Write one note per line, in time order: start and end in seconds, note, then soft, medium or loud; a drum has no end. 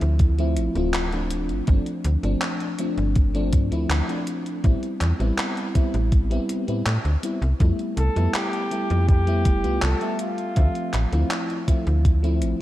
0.00 0.58 D2 medium
0.00 0.34 F3 medium
0.00 0.34 A3 medium
0.00 0.35 C4 medium
0.00 0.35 E4 medium
0.00 closed hi-hat soft
0.19 kick loud
0.19 closed hi-hat medium
0.38 0.71 F3 medium
0.38 0.71 A3 medium
0.38 0.72 C4 medium
0.38 0.72 E4 loud
0.38 closed hi-hat soft
0.57 0.69 A1 medium
0.57 closed hi-hat medium
0.75 1.51 D1 medium
0.75 1.08 F3 medium
0.75 1.08 A3 medium
0.75 1.09 C4 medium
0.75 1.09 F4 loud
0.75 closed hi-hat soft
0.94 clap loud
0.94 closed hi-hat medium
1.12 1.63 F3 medium
1.12 1.64 A3 medium
1.12 1.64 C4 medium
1.12 1.64 D4 medium
1.12 closed hi-hat soft
1.30 closed hi-hat medium
1.49 1.61 G1 medium
1.49 closed hi-hat soft
1.67 1.80 G1 medium
1.67 2.19 F3 medium
1.67 2.19 A3 medium
1.67 2.20 C4 medium
1.67 2.20 D4 medium
1.67 kick loud
1.67 closed hi-hat medium
1.86 closed hi-hat soft
2.04 2.17 D2 loud
2.04 closed hi-hat medium
2.23 2.35 G1 medium
2.23 2.74 F3 medium
2.23 2.75 A3 medium
2.23 2.75 C4 medium
2.23 2.75 D4 medium
2.23 closed hi-hat soft
2.42 clap loud
2.42 closed hi-hat medium
2.60 closed hi-hat soft
2.79 3.30 F3 medium
2.79 3.31 A3 medium
2.79 3.31 C4 medium
2.79 3.31 D4 loud
2.79 closed hi-hat medium
2.98 3.55 G1 medium
2.98 closed hi-hat soft
3.15 kick loud
3.15 closed hi-hat medium
3.34 3.67 F3 medium
3.34 3.67 A3 medium
3.34 3.68 C4 medium
3.34 3.68 D4 loud
3.34 closed hi-hat soft
3.53 3.71 G2 medium
3.53 kick loud
3.53 closed hi-hat medium
3.71 3.86 D2 soft
3.71 4.04 F3 medium
3.71 4.04 A3 medium
3.71 4.05 C4 medium
3.71 4.05 E4 loud
3.71 closed hi-hat soft
3.89 4.02 D2 medium
3.89 clap loud
3.89 closed hi-hat medium
4.08 4.59 F3 medium
4.08 4.60 A3 medium
4.08 4.60 C4 medium
4.08 4.60 D4 medium
4.08 closed hi-hat soft
4.27 closed hi-hat medium
4.46 closed hi-hat soft
4.63 4.76 A1 medium
4.63 5.15 G3 medium
4.63 5.16 B3 medium
4.63 5.16 C4 medium
4.63 5.16 E4 medium
4.63 kick loud
4.63 closed hi-hat medium
4.83 closed hi-hat soft
5.01 5.13 E2 loud
5.01 clap medium
5.01 closed hi-hat medium
5.19 5.32 A1 medium
5.19 5.70 G3 medium
5.19 5.71 B3 medium
5.19 5.71 C4 medium
5.19 5.71 E4 medium
5.19 closed hi-hat soft
5.38 clap loud
5.38 closed hi-hat medium
5.57 closed hi-hat soft
5.74 6.26 G3 medium
5.74 6.26 B3 medium
5.74 6.27 C4 medium
5.74 6.27 E4 medium
5.74 kick loud
5.74 closed hi-hat medium
5.94 6.39 A1 medium
5.94 closed hi-hat soft
6.12 kick loud
6.12 closed hi-hat medium
6.30 6.63 G3 medium
6.30 6.63 B3 medium
6.30 6.64 C4 medium
6.30 6.64 E4 loud
6.30 closed hi-hat soft
6.49 closed hi-hat medium
6.67 6.83 A2 soft
6.67 6.82 G3 medium
6.67 6.82 B3 medium
6.67 6.82 C4 medium
6.67 6.82 E4 medium
6.67 closed hi-hat soft
6.86 6.98 A2 medium
6.86 clap loud
6.86 closed hi-hat medium
7.05 7.17 D2 medium
7.05 closed hi-hat soft
7.23 7.38 G3 medium
7.23 7.38 B3 medium
7.23 7.38 C4 medium
7.23 7.38 E4 medium
7.23 closed hi-hat medium
7.42 7.54 C2 loud
7.42 closed hi-hat soft
7.59 7.73 F2 loud
7.59 8.11 G3 medium
7.59 8.12 A3 medium
7.59 8.12 B3 medium
7.59 8.12 E4 medium
7.59 kick loud
7.59 closed hi-hat medium
7.79 closed hi-hat soft
7.97 8.09 C2 loud
7.97 8.32 A4 loud
7.97 closed hi-hat medium
8.15 8.28 F2 medium
8.15 8.67 G3 medium
8.15 8.67 A3 medium
8.15 8.67 B3 medium
8.15 8.68 E4 medium
8.15 closed hi-hat soft
8.34 9.05 G4 loud
8.34 clap loud
8.34 closed hi-hat medium
8.53 closed hi-hat soft
8.71 9.23 G3 medium
8.71 9.23 A3 medium
8.71 9.23 B3 medium
8.71 9.23 E4 medium
8.71 closed hi-hat medium
8.90 9.47 F2 medium
8.90 closed hi-hat soft
9.09 9.84 G4 loud
9.09 kick loud
9.09 closed hi-hat medium
9.27 9.60 G3 medium
9.27 9.60 A3 medium
9.27 9.60 B3 medium
9.27 9.60 E4 loud
9.27 closed hi-hat soft
9.45 9.64 F1 medium
9.45 kick loud
9.45 closed hi-hat medium
9.63 9.79 C2 soft
9.63 9.96 G3 medium
9.63 9.97 A3 medium
9.63 9.97 B3 medium
9.63 9.97 F4 loud
9.63 closed hi-hat soft
9.82 9.95 C2 medium
9.82 10.20 A4 loud
9.82 clap loud
9.82 closed hi-hat medium
10.01 10.52 G3 medium
10.01 10.52 A3 medium
10.01 10.52 B3 medium
10.01 10.53 E5 medium
10.01 closed hi-hat soft
10.19 11.27 F4 medium
10.19 closed hi-hat medium
10.38 closed hi-hat soft
10.55 10.69 D2 medium
10.55 11.07 F3 medium
10.55 11.08 A3 medium
10.55 11.08 C4 medium
10.55 11.08 E5 medium
10.55 kick loud
10.55 closed hi-hat medium
10.75 closed hi-hat soft
10.93 11.06 A1 medium
10.93 clap medium
10.93 closed hi-hat medium
11.12 11.24 D2 medium
11.12 11.63 F3 medium
11.12 11.63 A3 medium
11.12 11.64 C4 medium
11.12 11.64 E4 medium
11.12 closed hi-hat soft
11.31 clap loud
11.31 closed hi-hat medium
11.50 closed hi-hat soft
11.67 12.19 F3 medium
11.67 12.19 A3 medium
11.67 12.19 C4 medium
11.67 12.20 E4 medium
11.67 kick loud
11.67 closed hi-hat medium
11.87 12.43 D2 medium
11.87 closed hi-hat soft
12.05 kick loud
12.05 closed hi-hat medium
12.23 12.56 F3 loud
12.23 12.56 A3 medium
12.23 12.56 C4 medium
12.23 12.57 E4 loud
12.23 closed hi-hat soft
12.42 12.54 A1 medium
12.42 closed hi-hat medium